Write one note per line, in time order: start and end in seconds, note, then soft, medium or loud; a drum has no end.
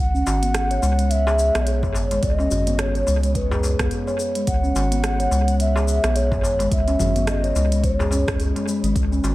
0.00 0.22 C#2 loud
0.00 1.12 F#5 loud
0.14 0.26 C#4 loud
0.14 shaker soft
0.26 0.79 G#1 medium
0.26 0.41 F#4 medium
0.26 darbuka tek medium
0.26 shaker medium
0.43 0.54 B3 medium
0.43 closed hi-hat soft
0.43 shaker soft
0.54 cross-stick medium
0.54 closed hi-hat medium
0.54 shaker soft
0.71 0.82 C#5 medium
0.71 closed hi-hat soft
0.71 shaker soft
0.82 1.50 C#2 medium
0.82 0.92 G#3 medium
0.82 darbuka ka medium
0.82 shaker medium
0.99 1.10 G#3 medium
0.99 closed hi-hat soft
0.99 shaker soft
1.11 1.68 E5 loud
1.11 closed hi-hat medium
1.11 shaker soft
1.27 1.38 G#4 medium
1.27 darbuka tek medium
1.27 shaker soft
1.39 shaker medium
1.55 1.96 B1 medium
1.55 1.66 B3 medium
1.55 cross-stick medium
1.55 closed hi-hat soft
1.55 darbuka ka medium
1.55 shaker soft
1.66 2.24 C#5 medium
1.66 closed hi-hat medium
1.66 shaker soft
1.83 1.94 C#5 medium
1.83 kick loud
1.83 darbuka ka medium
1.83 darbuka dum medium
1.83 shaker soft
1.94 2.19 G#1 medium
1.94 darbuka tek medium
1.94 shaker medium
2.11 2.22 G#3 medium
2.11 closed hi-hat soft
2.11 darbuka ka medium
2.11 shaker soft
2.23 2.47 C#2 loud
2.23 2.34 D5 loud
2.23 kick loud
2.23 closed hi-hat medium
2.23 shaker soft
2.34 2.81 D#5 loud
2.38 2.50 C#4 medium
2.38 darbuka tek soft
2.38 shaker soft
2.51 3.04 G#1 medium
2.51 2.65 F#4 medium
2.51 darbuka dum medium
2.51 shaker medium
2.67 2.78 B3 medium
2.67 closed hi-hat soft
2.67 shaker soft
2.79 3.34 C#5 medium
2.79 cross-stick medium
2.79 closed hi-hat medium
2.79 shaker soft
2.95 3.06 C#5 medium
2.95 closed hi-hat soft
2.95 shaker soft
3.07 3.75 C#2 medium
3.07 3.16 G#3 medium
3.07 darbuka ka soft
3.07 shaker medium
3.23 3.34 G#3 medium
3.23 closed hi-hat soft
3.23 shaker soft
3.35 3.87 B4 medium
3.35 kick loud
3.35 closed hi-hat medium
3.35 shaker soft
3.51 3.62 G#4 medium
3.51 darbuka ka medium
3.51 darbuka tek medium
3.51 darbuka dum medium
3.51 shaker soft
3.63 darbuka ka medium
3.63 darbuka tek medium
3.63 shaker medium
3.79 3.89 C#2 medium
3.79 3.90 B3 medium
3.79 kick loud
3.79 cross-stick medium
3.79 closed hi-hat soft
3.79 darbuka dum medium
3.79 shaker soft
3.91 closed hi-hat medium
3.91 shaker soft
4.07 4.19 C#5 medium
4.07 darbuka ka soft
4.07 shaker soft
4.20 shaker medium
4.35 4.47 G#3 medium
4.35 closed hi-hat soft
4.35 shaker soft
4.47 4.71 C#2 medium
4.47 5.56 F#5 loud
4.47 kick loud
4.47 closed hi-hat medium
4.47 shaker soft
4.63 4.75 C#4 medium
4.63 shaker soft
4.75 5.28 G#1 medium
4.75 4.90 F#4 medium
4.75 darbuka tek medium
4.75 shaker medium
4.92 5.03 B3 medium
4.92 closed hi-hat soft
4.92 shaker soft
5.04 cross-stick medium
5.04 closed hi-hat medium
5.04 shaker soft
5.20 5.31 C#5 medium
5.20 closed hi-hat soft
5.20 shaker soft
5.31 5.99 C#2 medium
5.31 5.41 G#3 medium
5.31 darbuka ka soft
5.31 shaker medium
5.48 5.59 G#3 medium
5.48 closed hi-hat soft
5.48 shaker soft
5.60 6.17 E5 loud
5.60 closed hi-hat medium
5.60 shaker soft
5.76 5.87 G#4 medium
5.76 darbuka tek medium
5.76 shaker soft
5.88 shaker medium
6.03 6.45 B1 medium
6.03 6.15 B3 medium
6.03 cross-stick medium
6.03 closed hi-hat soft
6.03 darbuka ka soft
6.03 shaker soft
6.16 6.71 C#5 medium
6.16 closed hi-hat medium
6.16 shaker soft
6.31 6.43 C#5 medium
6.31 kick loud
6.31 darbuka ka soft
6.31 darbuka dum medium
6.31 shaker soft
6.43 6.68 G#1 medium
6.43 darbuka tek medium
6.43 shaker medium
6.59 6.71 G#3 medium
6.59 closed hi-hat soft
6.59 darbuka ka medium
6.59 shaker soft
6.71 6.95 C#2 medium
6.71 7.29 E5 loud
6.71 kick loud
6.71 closed hi-hat medium
6.71 shaker soft
6.88 6.99 C#4 medium
6.88 closed hi-hat soft
6.88 darbuka tek soft
6.88 shaker soft
6.99 7.52 G#1 medium
6.99 7.14 F#4 medium
6.99 darbuka dum medium
6.99 low conga medium
6.99 shaker medium
7.16 7.27 B3 medium
7.16 closed hi-hat soft
7.16 shaker soft
7.27 7.86 D#5 loud
7.27 cross-stick medium
7.27 closed hi-hat medium
7.27 shaker soft
7.43 7.55 C#5 medium
7.43 closed hi-hat soft
7.43 shaker soft
7.55 8.23 C#2 medium
7.55 7.65 G#3 medium
7.55 darbuka ka medium
7.55 shaker medium
7.72 7.83 G#3 medium
7.72 closed hi-hat soft
7.72 shaker soft
7.83 8.40 C#5 medium
7.83 kick loud
7.83 closed hi-hat soft
7.83 shaker soft
7.99 8.11 G#4 medium
7.99 darbuka ka medium
7.99 darbuka tek medium
7.99 darbuka dum medium
7.99 shaker soft
8.11 8.27 C#4 loud
8.11 darbuka ka medium
8.11 darbuka tek medium
8.11 shaker medium
8.28 8.38 C#2 medium
8.28 kick loud
8.28 cross-stick medium
8.28 closed hi-hat soft
8.28 darbuka dum medium
8.28 shaker soft
8.39 8.53 C#2 loud
8.39 closed hi-hat soft
8.39 shaker soft
8.56 8.67 G#3 medium
8.56 closed hi-hat soft
8.56 darbuka ka soft
8.56 shaker soft
8.68 8.83 G#3 loud
8.68 shaker medium
8.83 8.93 G#1 loud
8.83 8.95 G#3 loud
8.83 closed hi-hat soft
8.83 shaker soft
8.95 9.20 C#2 loud
8.95 kick loud
8.95 closed hi-hat medium
8.95 shaker soft
9.12 9.23 C#4 medium
9.12 shaker soft
9.23 9.35 G#1 medium
9.23 9.35 F#4 medium
9.23 darbuka tek medium
9.23 shaker medium